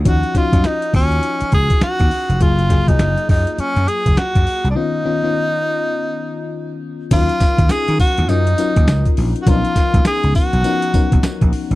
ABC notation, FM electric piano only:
X:1
M:4/4
L:1/16
Q:"Swing 16ths" 1/4=102
K:Ebm
V:1 name="FM electric piano"
[F,DEG] z [F,DEG] [DEFG]6 z6 z | [G,B,FA] z [G,B,FA] [G,B,FA]6 z6 z | [E,CDF] z [E,CDF] [E,CDF]6 z6 z | [G,DEFB]6 z2 [G,DEFB] z [G,DEFB]4 z2 |
[^E,=B,^C=D^D^A]6 z2 [E,B,CDA] z [^F,B,CDA]4 z2 |]